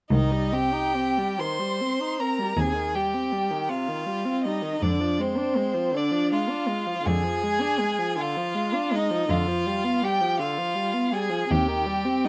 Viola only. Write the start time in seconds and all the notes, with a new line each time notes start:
0.12 D#3
0.32 G3
0.52 C4
0.73 D#4
0.95 C4
1.18 G3
1.40 D#3
1.59 G3
1.81 C4
2.02 D#4
2.20 C4
2.39 G3
2.58 C3
2.75 D#3
2.95 G3
3.14 C4
3.32 G3
3.51 D#3
3.70 C3
3.88 D#3
4.06 G3
4.25 C4
4.46 G3
4.62 D#3
4.81 D3
5.00 F3
5.19 G#3
5.37 D4
5.56 G#3
5.74 F3
5.92 D3
6.12 F3
6.32 G#3
6.49 D4
6.68 G#3
6.87 F3
7.04 D3
7.24 F3
7.43 G#3
7.61 D4
7.79 G#3
7.99 F3
8.18 D3
8.37 F3
8.55 G#3
8.74 D4
8.93 G#3
9.11 F3
9.29 D3
9.48 F3
9.66 G3
9.84 B3
10.02 G3
10.21 F3
10.39 D3
10.58 F3
10.75 G3
10.93 B3
11.12 G3
11.29 F3
11.49 C3
11.68 D#3
11.86 G3
12.05 C4
12.25 G3